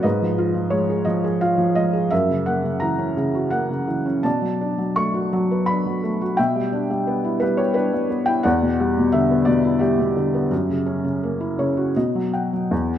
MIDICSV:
0, 0, Header, 1, 2, 480
1, 0, Start_track
1, 0, Key_signature, 2, "minor"
1, 0, Tempo, 688863
1, 31, Time_signature, 3, 2, 24, 8
1, 1472, Tempo, 711744
1, 4352, Tempo, 691244
1, 7712, Tempo, 744417
1, 8846, End_track
2, 0, Start_track
2, 0, Title_t, "Felt piano"
2, 0, Program_c, 0, 0
2, 0, Control_c, 0, 64, 127
2, 18, Note_on_c, 0, 75, 62
2, 28, Note_on_c, 0, 44, 50
2, 30, Note_on_c, 0, 71, 44
2, 39, Control_c, 0, 64, 0
2, 152, Control_c, 0, 64, 127
2, 154, Note_on_c, 0, 53, 33
2, 265, Note_on_c, 0, 65, 43
2, 366, Note_off_c, 0, 53, 0
2, 377, Note_on_c, 0, 53, 36
2, 490, Note_on_c, 0, 73, 58
2, 498, Note_on_c, 0, 56, 42
2, 508, Note_off_c, 0, 75, 0
2, 625, Note_on_c, 0, 68, 36
2, 713, Note_off_c, 0, 71, 0
2, 729, Note_on_c, 0, 75, 59
2, 733, Note_off_c, 0, 53, 0
2, 743, Note_off_c, 0, 73, 0
2, 744, Note_on_c, 0, 53, 52
2, 855, Note_off_c, 0, 68, 0
2, 865, Note_on_c, 0, 68, 39
2, 977, Note_off_c, 0, 65, 0
2, 983, Note_on_c, 0, 77, 66
2, 985, Note_off_c, 0, 75, 0
2, 987, Note_on_c, 0, 65, 38
2, 1089, Note_off_c, 0, 53, 0
2, 1099, Note_on_c, 0, 53, 39
2, 1211, Note_off_c, 0, 56, 0
2, 1221, Note_on_c, 0, 56, 37
2, 1222, Note_on_c, 0, 75, 63
2, 1234, Note_off_c, 0, 77, 0
2, 1336, Note_off_c, 0, 68, 0
2, 1346, Note_on_c, 0, 68, 37
2, 1443, Note_off_c, 0, 44, 0
2, 1458, Note_off_c, 0, 53, 0
2, 1459, Note_off_c, 0, 65, 0
2, 1461, Note_off_c, 0, 56, 0
2, 1466, Note_off_c, 0, 68, 0
2, 1467, Note_on_c, 0, 76, 73
2, 1471, Note_on_c, 0, 42, 49
2, 1476, Note_off_c, 0, 75, 0
2, 1478, Note_on_c, 0, 70, 44
2, 1481, Control_c, 0, 64, 0
2, 1590, Note_on_c, 0, 49, 34
2, 1591, Control_c, 0, 64, 127
2, 1690, Note_off_c, 0, 76, 0
2, 1706, Note_on_c, 0, 78, 54
2, 1708, Note_on_c, 0, 58, 40
2, 1815, Note_off_c, 0, 49, 0
2, 1826, Note_on_c, 0, 49, 34
2, 1934, Note_on_c, 0, 82, 60
2, 1950, Note_on_c, 0, 52, 39
2, 1952, Note_off_c, 0, 78, 0
2, 2061, Note_on_c, 0, 61, 35
2, 2161, Note_off_c, 0, 70, 0
2, 2174, Note_off_c, 0, 49, 0
2, 2184, Note_on_c, 0, 49, 48
2, 2304, Note_on_c, 0, 66, 32
2, 2391, Note_off_c, 0, 82, 0
2, 2406, Note_off_c, 0, 58, 0
2, 2411, Note_on_c, 0, 78, 59
2, 2416, Note_on_c, 0, 58, 35
2, 2536, Note_off_c, 0, 49, 0
2, 2546, Note_on_c, 0, 49, 31
2, 2653, Note_off_c, 0, 52, 0
2, 2663, Note_on_c, 0, 52, 30
2, 2772, Note_off_c, 0, 61, 0
2, 2782, Note_on_c, 0, 61, 30
2, 2886, Note_off_c, 0, 42, 0
2, 2895, Note_off_c, 0, 58, 0
2, 2895, Note_off_c, 0, 66, 0
2, 2901, Note_on_c, 0, 81, 59
2, 2903, Note_off_c, 0, 49, 0
2, 2903, Note_on_c, 0, 47, 40
2, 2904, Note_off_c, 0, 52, 0
2, 2906, Note_off_c, 0, 61, 0
2, 2917, Note_on_c, 0, 74, 46
2, 2922, Note_off_c, 0, 78, 0
2, 2922, Control_c, 0, 64, 0
2, 3026, Note_on_c, 0, 54, 29
2, 3033, Control_c, 0, 64, 127
2, 3157, Note_on_c, 0, 62, 39
2, 3261, Note_off_c, 0, 54, 0
2, 3271, Note_on_c, 0, 54, 31
2, 3392, Note_on_c, 0, 85, 63
2, 3397, Note_on_c, 0, 57, 37
2, 3410, Note_off_c, 0, 81, 0
2, 3514, Note_on_c, 0, 66, 35
2, 3614, Note_off_c, 0, 74, 0
2, 3630, Note_off_c, 0, 54, 0
2, 3640, Note_on_c, 0, 54, 46
2, 3766, Note_on_c, 0, 71, 33
2, 3866, Note_on_c, 0, 83, 65
2, 3877, Note_off_c, 0, 62, 0
2, 3887, Note_on_c, 0, 62, 31
2, 3890, Note_off_c, 0, 85, 0
2, 3990, Note_off_c, 0, 54, 0
2, 4000, Note_on_c, 0, 54, 33
2, 4107, Note_off_c, 0, 57, 0
2, 4117, Note_on_c, 0, 57, 35
2, 4228, Note_off_c, 0, 66, 0
2, 4238, Note_on_c, 0, 66, 34
2, 4319, Note_off_c, 0, 47, 0
2, 4337, Note_off_c, 0, 71, 0
2, 4341, Note_off_c, 0, 54, 0
2, 4341, Note_off_c, 0, 62, 0
2, 4343, Note_on_c, 0, 79, 66
2, 4344, Note_off_c, 0, 57, 0
2, 4349, Note_off_c, 0, 66, 0
2, 4354, Note_on_c, 0, 76, 49
2, 4358, Note_on_c, 0, 47, 50
2, 4359, Note_off_c, 0, 83, 0
2, 4361, Control_c, 0, 64, 0
2, 4473, Note_on_c, 0, 55, 33
2, 4487, Control_c, 0, 64, 127
2, 4591, Note_on_c, 0, 62, 43
2, 4703, Note_off_c, 0, 55, 0
2, 4713, Note_on_c, 0, 55, 38
2, 4830, Note_on_c, 0, 59, 38
2, 4951, Note_on_c, 0, 64, 37
2, 5042, Note_off_c, 0, 76, 0
2, 5057, Note_on_c, 0, 71, 63
2, 5064, Note_off_c, 0, 55, 0
2, 5074, Note_on_c, 0, 55, 52
2, 5086, Note_off_c, 0, 79, 0
2, 5179, Note_on_c, 0, 73, 59
2, 5186, Note_off_c, 0, 71, 0
2, 5186, Note_on_c, 0, 67, 37
2, 5294, Note_on_c, 0, 71, 62
2, 5295, Note_off_c, 0, 62, 0
2, 5306, Note_on_c, 0, 62, 37
2, 5307, Note_off_c, 0, 73, 0
2, 5417, Note_off_c, 0, 55, 0
2, 5427, Note_on_c, 0, 55, 37
2, 5531, Note_off_c, 0, 59, 0
2, 5542, Note_on_c, 0, 59, 38
2, 5653, Note_on_c, 0, 79, 65
2, 5657, Note_off_c, 0, 64, 0
2, 5667, Note_on_c, 0, 64, 39
2, 5673, Note_off_c, 0, 71, 0
2, 5765, Note_off_c, 0, 47, 0
2, 5770, Note_off_c, 0, 67, 0
2, 5774, Note_off_c, 0, 62, 0
2, 5775, Note_on_c, 0, 78, 68
2, 5778, Note_off_c, 0, 55, 0
2, 5779, Note_off_c, 0, 59, 0
2, 5783, Note_on_c, 0, 74, 54
2, 5785, Note_off_c, 0, 64, 0
2, 5786, Note_off_c, 0, 79, 0
2, 5789, Note_on_c, 0, 40, 52
2, 5799, Control_c, 0, 64, 0
2, 5909, Note_on_c, 0, 47, 32
2, 5927, Control_c, 0, 64, 127
2, 6030, Note_on_c, 0, 55, 47
2, 6145, Note_off_c, 0, 47, 0
2, 6156, Note_on_c, 0, 47, 37
2, 6254, Note_on_c, 0, 76, 64
2, 6267, Note_on_c, 0, 50, 41
2, 6273, Note_off_c, 0, 78, 0
2, 6384, Note_on_c, 0, 59, 36
2, 6471, Note_off_c, 0, 74, 0
2, 6482, Note_on_c, 0, 74, 62
2, 6487, Note_off_c, 0, 47, 0
2, 6497, Note_on_c, 0, 47, 56
2, 6504, Note_off_c, 0, 76, 0
2, 6618, Note_on_c, 0, 64, 36
2, 6720, Note_on_c, 0, 76, 54
2, 6726, Note_off_c, 0, 55, 0
2, 6727, Note_on_c, 0, 67, 40
2, 6737, Note_on_c, 0, 55, 38
2, 6740, Note_off_c, 0, 74, 0
2, 6845, Note_off_c, 0, 47, 0
2, 6855, Note_on_c, 0, 47, 36
2, 6968, Note_off_c, 0, 50, 0
2, 6979, Note_on_c, 0, 50, 36
2, 7091, Note_off_c, 0, 59, 0
2, 7102, Note_on_c, 0, 59, 35
2, 7197, Note_off_c, 0, 40, 0
2, 7205, Note_off_c, 0, 64, 0
2, 7208, Note_off_c, 0, 55, 0
2, 7210, Note_off_c, 0, 47, 0
2, 7215, Note_off_c, 0, 50, 0
2, 7217, Note_on_c, 0, 42, 49
2, 7220, Note_off_c, 0, 59, 0
2, 7233, Control_c, 0, 64, 0
2, 7338, Control_c, 0, 64, 127
2, 7346, Note_on_c, 0, 49, 30
2, 7464, Note_on_c, 0, 61, 43
2, 7577, Note_off_c, 0, 49, 0
2, 7588, Note_on_c, 0, 49, 36
2, 7719, Note_on_c, 0, 58, 37
2, 7829, Note_on_c, 0, 64, 35
2, 7938, Note_off_c, 0, 49, 0
2, 7947, Note_on_c, 0, 49, 44
2, 7949, Note_on_c, 0, 73, 48
2, 8066, Note_on_c, 0, 66, 32
2, 8155, Note_off_c, 0, 76, 0
2, 8158, Note_off_c, 0, 67, 0
2, 8162, Note_off_c, 0, 42, 0
2, 8169, Note_off_c, 0, 61, 0
2, 8175, Note_off_c, 0, 73, 0
2, 8180, Note_off_c, 0, 58, 0
2, 8181, Note_off_c, 0, 64, 0
2, 8184, Note_off_c, 0, 49, 0
2, 8186, Note_off_c, 0, 66, 0
2, 8190, Note_on_c, 0, 47, 42
2, 8190, Note_on_c, 0, 75, 40
2, 8199, Control_c, 0, 64, 0
2, 8312, Note_on_c, 0, 54, 32
2, 8327, Control_c, 0, 64, 127
2, 8419, Note_off_c, 0, 75, 0
2, 8430, Note_on_c, 0, 79, 37
2, 8431, Note_on_c, 0, 78, 31
2, 8547, Note_off_c, 0, 54, 0
2, 8556, Note_on_c, 0, 54, 30
2, 8655, Note_off_c, 0, 79, 0
2, 8661, Note_off_c, 0, 47, 0
2, 8666, Note_off_c, 0, 78, 0
2, 8672, Note_off_c, 0, 54, 0
2, 8673, Note_on_c, 0, 40, 52
2, 8683, Control_c, 0, 64, 0
2, 8802, Control_c, 0, 64, 127
2, 8846, Note_off_c, 0, 40, 0
2, 8846, End_track
0, 0, End_of_file